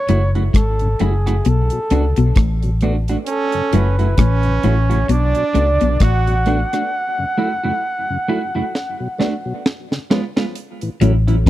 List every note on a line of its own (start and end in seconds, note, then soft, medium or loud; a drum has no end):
0.00 0.31 C#5 loud
0.09 0.48 F#1 medium
0.09 0.36 F#2 medium
0.09 0.20 F#3 medium
0.09 0.22 A3 medium
0.09 0.20 A3 medium
0.09 0.22 E4 medium
0.09 0.20 E4 medium
0.09 0.22 F#4 medium
0.09 closed hi-hat medium
0.35 0.43 F#2 medium
0.35 0.43 C#3 medium
0.35 0.43 A3 medium
0.35 0.43 E4 soft
0.35 0.42 F#4 medium
0.35 closed hi-hat soft
0.54 0.94 G#1 medium
0.54 0.82 G#2 medium
0.54 1.04 A4 medium
0.54 kick loud
0.54 cross-stick medium
0.54 closed hi-hat loud
0.79 0.89 F#2 medium
0.79 0.89 C#3 medium
0.79 closed hi-hat soft
1.00 1.40 F#1 medium
1.00 1.28 F#2 medium
1.00 1.11 F#3 medium
1.00 1.13 A3 medium
1.00 1.11 A3 medium
1.00 1.13 E4 medium
1.00 1.11 E4 medium
1.00 1.13 F#4 medium
1.00 1.50 G#4 medium
1.00 closed hi-hat medium
1.26 1.34 F#2 medium
1.26 1.34 C#3 medium
1.26 1.34 A3 soft
1.26 1.34 E4 medium
1.26 1.34 F#4 medium
1.26 cross-stick medium
1.26 closed hi-hat medium
1.45 1.68 B1 medium
1.45 1.62 B2 medium
1.45 closed hi-hat medium
1.49 2.38 A4 medium
1.70 1.80 B2 medium
1.70 1.80 F#3 medium
1.70 closed hi-hat medium
1.90 2.14 C#2 medium
1.90 2.07 C#3 medium
1.90 2.04 A3 medium
1.90 2.02 A3 medium
1.90 2.02 B3 medium
1.90 2.04 D4 medium
1.90 2.02 D4 medium
1.90 2.04 F#4 loud
1.90 closed hi-hat medium
2.16 2.34 B1 medium
2.16 2.25 B2 medium
2.16 2.29 B2 medium
2.16 2.25 F#3 medium
2.16 closed hi-hat medium
2.36 3.15 A1 medium
2.36 2.64 A2 medium
2.36 kick loud
2.36 cross-stick loud
2.36 closed hi-hat medium
2.63 2.71 B2 medium
2.63 2.71 F#3 medium
2.63 closed hi-hat medium
2.81 2.95 A3 medium
2.81 2.93 A3 medium
2.81 2.93 B3 medium
2.81 2.93 D4 medium
2.81 2.95 D4 medium
2.81 2.95 F#4 medium
2.81 closed hi-hat medium
3.08 3.17 A3 soft
3.08 3.16 D4 medium
3.08 3.16 F#4 medium
3.08 closed hi-hat medium
3.26 3.95 C#4 loud
3.26 3.76 A4 loud
3.26 closed hi-hat medium
3.52 3.62 F#2 medium
3.52 3.62 C#3 medium
3.52 closed hi-hat medium
3.73 4.12 F#1 medium
3.73 4.00 F#2 medium
3.73 3.84 F#3 medium
3.73 3.86 A3 medium
3.73 3.84 A3 medium
3.73 3.84 E4 medium
3.73 3.86 E4 medium
3.73 3.86 F#4 medium
3.73 4.67 B4 medium
3.73 closed hi-hat medium
3.99 4.07 F#2 medium
3.99 4.07 C#3 medium
3.99 4.07 A3 soft
3.99 4.15 E4 medium
3.99 4.07 E4 soft
3.99 4.06 F#4 medium
3.99 closed hi-hat soft
4.18 4.58 A1 medium
4.18 4.46 A2 medium
4.18 5.05 C#4 loud
4.18 kick loud
4.18 cross-stick loud
4.18 closed hi-hat medium
4.43 4.53 F#2 medium
4.43 4.53 C#3 medium
4.43 closed hi-hat soft
4.63 5.03 A1 medium
4.63 4.92 A2 medium
4.63 4.75 F#3 medium
4.63 4.75 A3 medium
4.63 4.77 A3 medium
4.63 4.77 E4 medium
4.63 4.75 E4 medium
4.63 4.77 F#4 medium
4.63 5.13 C#5 medium
4.63 closed hi-hat medium
4.90 4.99 F#2 medium
4.90 4.99 C#3 medium
4.90 4.98 A3 soft
4.90 4.98 E4 medium
4.90 4.97 F#4 medium
4.90 closed hi-hat medium
5.09 5.32 B1 medium
5.09 5.25 B2 medium
5.09 5.97 D4 loud
5.09 6.05 D5 loud
5.09 closed hi-hat medium
5.35 5.44 B2 soft
5.35 5.44 F#3 medium
5.35 closed hi-hat medium
5.54 5.78 C#2 medium
5.54 5.71 C#3 medium
5.54 5.67 A3 medium
5.54 5.65 A3 medium
5.54 5.65 B3 medium
5.54 5.68 D4 medium
5.54 5.66 D4 medium
5.54 5.68 F#4 medium
5.54 closed hi-hat medium
5.81 5.99 B1 medium
5.81 5.93 B2 medium
5.81 5.89 B2 medium
5.81 5.89 F#3 medium
5.81 closed hi-hat medium
6.00 6.63 A1 medium
6.00 6.28 A2 medium
6.00 6.68 F#4 loud
6.00 9.66 F#5 medium
6.00 kick loud
6.00 cross-stick loud
6.00 closed hi-hat medium
6.27 6.35 B2 medium
6.27 6.35 F#3 medium
6.27 closed hi-hat medium
6.46 6.59 A3 medium
6.46 6.57 A3 medium
6.46 6.57 B3 medium
6.46 6.59 D4 medium
6.46 6.57 D4 medium
6.46 6.60 F#4 loud
6.46 closed hi-hat medium
6.73 6.81 A3 soft
6.73 6.80 D4 medium
6.73 6.80 F#4 medium
6.73 cross-stick medium
6.73 closed hi-hat medium
7.18 7.26 F#2 soft
7.18 7.26 C#3 medium
7.38 7.48 F#3 medium
7.38 7.50 A3 medium
7.38 7.48 A3 medium
7.38 7.50 E4 medium
7.38 7.49 E4 medium
7.38 7.51 F#4 medium
7.64 7.72 F#2 medium
7.64 7.72 C#3 medium
7.64 7.72 A3 medium
7.64 7.71 E4 medium
7.64 7.71 F#4 medium
8.10 8.17 F#2 medium
8.10 8.18 C#3 medium
8.28 8.39 F#3 medium
8.28 8.41 A3 medium
8.28 8.39 A3 medium
8.28 8.39 E4 medium
8.28 8.41 E4 medium
8.28 8.42 F#4 medium
8.54 8.62 F#2 medium
8.54 8.62 C#3 medium
8.54 8.63 A3 medium
8.54 8.62 E4 medium
8.54 8.62 F#4 medium
8.75 snare medium
9.00 9.08 B2 soft
9.00 9.08 F#3 medium
9.18 9.29 A3 medium
9.18 9.32 A3 medium
9.18 9.30 B3 medium
9.18 9.30 D4 medium
9.18 9.33 D4 medium
9.18 9.33 F#4 loud
9.18 snare medium
9.45 9.53 B2 medium
9.45 9.53 F#3 medium
9.66 snare medium
9.91 9.99 C#3 medium
9.91 snare medium
10.10 10.21 F3 medium
10.10 10.23 G#3 medium
10.10 10.21 B3 medium
10.10 10.23 B3 medium
10.10 10.21 C#4 medium
10.10 10.24 F4 medium
10.10 snare loud
10.36 10.44 G#3 medium
10.36 10.44 B3 medium
10.36 10.44 F4 medium
10.36 snare medium
10.55 closed hi-hat loud
10.81 10.90 A2 medium
10.81 10.90 E3 medium
10.81 closed hi-hat medium
11.01 11.47 A1 medium
11.01 11.29 A2 medium
11.01 11.14 F#3 medium
11.01 11.12 F#3 medium
11.01 11.12 A3 medium
11.01 11.14 C#4 medium
11.01 11.13 C#4 medium
11.01 11.14 E4 medium
11.01 closed hi-hat medium
11.27 11.36 A2 medium
11.27 11.36 E3 medium
11.27 11.35 F#3 soft
11.27 11.35 C#4 soft
11.27 11.35 E4 medium
11.27 closed hi-hat soft
11.46 11.50 C#2 medium
11.46 kick loud